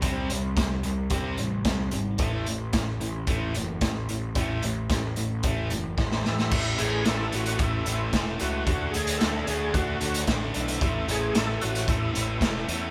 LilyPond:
<<
  \new Staff \with { instrumentName = "Tonewheel organ" } { \time 4/4 \key a \major \tempo 4 = 111 r1 | r1 | r2. r8 e'8~ | e'8 gis'8 a'8 fis'8 e'4 r8 fis'8~ |
fis'8 gis'8 a'8 gis'8 fis'4 r8 e'8~ | e'8 gis'8 a'8 fis'8 e'4 r8 e'8 | }
  \new Staff \with { instrumentName = "Distorted electric guitar" } { \clef bass \time 4/4 \key a \major <c g c'>8 <c g>8 <c g>8 <c g>8 <c g c'>8 <c g>8 <c g>8 <c g>8 | <a, e a>8 <a, e>8 <a, e>8 <a, e>8 <a, e a>8 <a, e>8 <a, e>8 <a, e>8 | <a, e a>8 <a, e>8 <a, e>8 <a, e>8 <a, e a>8 <a, e>8 <a, e>8 <a, e>8 | <a, e a>8 <a, e a>8 <a, e a>8 <a, e a>8 <a, e a>8 <a, e a>8 <a, e a>8 <a, e a>8 |
<d a d'>8 <d a d'>8 <d a d'>8 <d a d'>8 <d a d'>8 <d a d'>8 <d a d'>8 <d a d'>8 | <a, e a>8 <a, e a>8 <a, e a>8 <a, e a>8 <a, e a>8 <a, e a>8 <a, e a>8 <a, e a>8 | }
  \new Staff \with { instrumentName = "Overdriven electric guitar" } { \clef bass \time 4/4 \key a \major <c g c'>8 <c g>8 <c g>8 <c g>8 <c g c'>8 <c g>8 <c g>8 <c g>8 | <a, e a>8 <a, e>8 <a, e>8 <a, e>8 <a, e a>8 <a, e>8 <a, e>8 <a, e>8 | <a, e a>8 <a, e>8 <a, e>8 <a, e>8 <a, e a>8 <a, e>8 <a, e>8 <a, e>8 | <a, e a>8 <a, e a>8 <a, e a>8 <a, e a>8 <a, e a>8 <a, e a>8 <a, e a>8 <a, e a>8 |
<d a d'>8 <d a d'>8 <d a d'>8 <d a d'>8 <d a d'>8 <d a d'>8 <d a d'>8 <d a d'>8 | <a, e a>8 <a, e a>8 <a, e a>8 <a, e a>8 <a, e a>8 <a, e a>8 <a, e a>8 <a, e a>8 | }
  \new Staff \with { instrumentName = "Picked electric bass" } { \clef bass \time 4/4 \key a \major c,8 c,8 c,8 c,8 c,8 a,,8 c,8 gis,,8 | a,,8 a,,8 a,,8 a,,8 a,,8 fis,,8 a,,8 a,,8 | a,,8 a,,8 a,,8 a,,8 a,,8 fis,,8 a,,8 a,,8 | a,,8 a,,8 a,,8 a,,8 a,,8 a,,8 e,,8 cis,8 |
d,8 d,8 d,8 d,8 d,8 d,8 a,,8 b,,8 | a,,8 a,,8 a,,8 a,,8 a,,8 a,,8 e,,8 e,8 | }
  \new DrumStaff \with { instrumentName = "Drums" } \drummode { \time 4/4 <hh bd>8 hh8 <hh bd sn>8 hh8 <hh bd>8 hh8 <hh bd sn>8 hh8 | <hh bd>8 hh8 <hh bd sn>8 hh8 <hh bd>8 hh8 <hh bd sn>8 hh8 | <hh bd>8 hh8 <hh bd sn>8 hh8 <hh bd>8 hh8 <bd sn>16 sn16 sn16 sn16 | <cymc bd>8 hh8 <hh sn>8 hh16 hh16 <hh bd>8 hh8 <hh bd sn>8 hh8 |
<hh bd>8 hh16 hh16 <hh sn>8 hh8 <hh bd>8 hh16 hh16 <hh bd sn>8 hh16 hh16 | <hh bd>8 hh8 <hh sn>8 hh16 hh16 <hh bd>8 hh8 <hh bd sn>8 hh8 | }
>>